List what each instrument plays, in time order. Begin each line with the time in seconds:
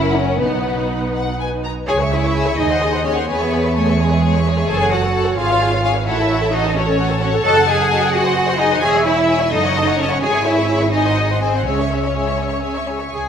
Already playing: double bass section F#1, cello section F#2, viola section C#4 A#4, violin section E4 F#5
0.18 violin section C#4
0.41 double bass section B1, cello section B2, violin section B3 F#5, viola section D#4 B4
1.13 violin section F#5
1.40 violin section G#5
1.64 violin section A#5
1.87 double bass section C#2, cello section G#4, viola section G#4 C#5, violin section C#5 G#5
2.00 viola section G#4 C#5, violin section E5 C#6
2.11 cello section E4, viola section G#4 C#5, violin section C#5 E5 G#5
2.23 viola section G#4 C#5, violin section E5 C#6
2.35 viola section G#4 C#5, violin section C#5 G#5
2.46 viola section G#4 C#5, violin section E5 C#6
2.58 double bass section D#2, cello section D#4, viola section G#4 D#5, violin section D#5 G#5
2.70 viola section C5, violin section F#5 C6
2.81 viola section G#4 D#5, violin section G#5
2.93 viola section C5, violin section F#5 C6
3.04 cello section C#4, viola section G#4 D#5, violin section C#5 G#5
3.16 viola section C5, violin section F#5 C6
3.27 double bass section E2, cello section B3, viola section G#4 C#5, violin section B4 C#5 G#5
3.39 viola section G#4 C#5, violin section E5 C#6
3.52 viola section G#4 C#5, violin section C#5 G#5
3.64 viola section G#4 C#5, violin section E5 C#6
3.75 cello section A3, viola section G#4 C#5, violin section A4 C#5 G#5
3.87 viola section G#4 C#5, violin section E5 C#6
3.99 cello section G#3, violin section G#4 C#5 G#5, viola section G#4 C#5
4.11 viola section G#4 C#5, violin section E5 C#6
4.23 viola section G#4 C#5, violin section C#5 G#5
4.35 viola section G#4 C#5, violin section E5 C#6
4.46 cello section G#3, viola section G#4 C#5, violin section G#4 C#5 G#5
4.57 viola section G#4 C#5, violin section E5 C#6
4.68 double bass section F#1, cello section G#4, violin section A4 G#5 A5, viola section A4 C#5
4.80 viola section A4 C#5, violin section C#5 F#5
4.91 cello section F#4, viola section A4 C#5, violin section A4 F#5 A5
5.03 viola section A4 C#5, violin section C#5 F#5
5.14 violin section A4 A5, viola section A4 C#5
5.25 viola section A4 C#5, violin section C#5 F#5
5.37 double bass section G#1, cello section F4, viola section G#4 C#5, violin section F5 G#5
5.49 viola section B4 F5, violin section C#5 F5
5.61 viola section G#4 C#5, violin section F5 G#5
5.71 viola section B4 F5, violin section C#5 F5
5.82 cello section F4, viola section G#4 C#5, violin section F5 G#5
5.95 viola section B4 F5, violin section C#5 F5
6.06 double bass section A1, cello section E4, viola section F#4 C#5, violin section A4 E5 F#5
6.18 viola section A4, violin section C#5 A5
6.29 viola section F#4 C#5, violin section A4 F#5
6.41 viola section A4, violin section C#5 A5
6.52 cello section D#4, viola section F#4 C#5, violin section A4 D#5 F#5
6.64 viola section A4, violin section C#5 A5
6.76 cello section C#4, viola section F#4 C#5, violin section A4 C#5 F#5
6.87 viola section A4, violin section C#5 A5
6.98 viola section F#4 C#5, violin section A4 F#5
7.10 viola section A4, violin section C#5 A5
7.20 cello section C#4, viola section F#4 C#5, violin section A4 C#5 F#5
7.32 viola section A4, violin section C#5 A5
7.43 double bass section F#1, viola section F#4 D#5, cello section A4, violin section F#5 A5
7.56 viola section A4 F#5, violin section F#5 A5
7.67 viola section F#4 D#5, cello section G#4, violin section F#5 G#5 A5
7.79 viola section A4 F#5, violin section F#5 A5
7.90 viola section F#4 D#5, violin section F#5 A5
8.02 viola section A4 F#5, violin section F#5 A5
8.11 cello section F#4, viola section G#4 D#5, violin section F#5 G#5
8.25 viola section C5, violin section F#5 C6
8.36 viola section G#4 D#5, violin section G#5
8.47 viola section C5, violin section F#5 C6
8.59 cello section D#4, viola section G#4 D#5, violin section D#5 G#5
8.71 viola section C5, violin section F#5 C6
8.80 double bass section E1, cello section G#4, viola section C#5 E5, violin section E5 G#5
8.84 violin section G#5
8.95 viola section C#5 E5, violin section E5 G#5
9.03 cello section E4, viola section C#5 E5, violin section E5 G#5
9.17 viola section C#5 E5, violin section E5 G#5
9.28 viola section C#5 E5, violin section E5 G#5
9.40 viola section C#5 E5, violin section E5 G#5
9.51 double bass section F#1, cello section D#4, viola section A4 D#5, violin section D#5 A5
9.63 viola section C#5, violin section F#5 C#6
9.76 viola section A4 D#5, violin section D#5 A5
9.88 viola section C#5, violin section F#5 C#6
9.98 cello section C#4, viola section A4 D#5, violin section C#5 D#5 A5
10.10 viola section C#5, violin section F#5 C#6
10.21 double bass section G#1, viola section G#4 C#5, cello section G#4, violin section C#5 G#5
10.33 viola section G#4 C#5, violin section E5 C#6
10.44 cello section E4, viola section G#4 C#5, violin section C#5 E5 G#5
10.55 viola section G#4 C#5, violin section E5 C#6
10.68 viola section G#4 C#5, violin section C#5 G#5
10.80 viola section G#4 C#5, violin section E5 C#6
10.92 cello section D#4, viola section G#4 D#5, violin section D#5 G#5
11.06 viola section C5, violin section F#5 C6
11.18 viola section G#4 D#5, violin section G#5
11.30 viola section C5, violin section F#5 C6
11.42 cello section C4, viola section G#4 D#5, violin section C5 G#5
11.54 viola section C5, violin section F#5 C6
11.65 double bass section C#2, cello section C#4, viola section G#4 E5, violin section C#5 G#5
11.78 viola section C#5, violin section E5 C#6
11.91 viola section G#4 E5, violin section C#5 G#5
12.04 viola section C#5, violin section E5 C#6
12.15 viola section G#4 E5, violin section C#5 G#5
12.27 viola section C#5, violin section E5 C#6
12.38 viola section G#4 E5, violin section C#5 G#5
12.50 viola section C#5, violin section E5 C#6
12.62 viola section G#4 E5, violin section C#5 G#5
12.76 viola section C#5, violin section E5 C#6
12.87 viola section G#4 E5, violin section C#5 G#5
12.98 viola section C#5, violin section E5 C#6
13.11 double bass section C#2, cello section G#4, violin section G#5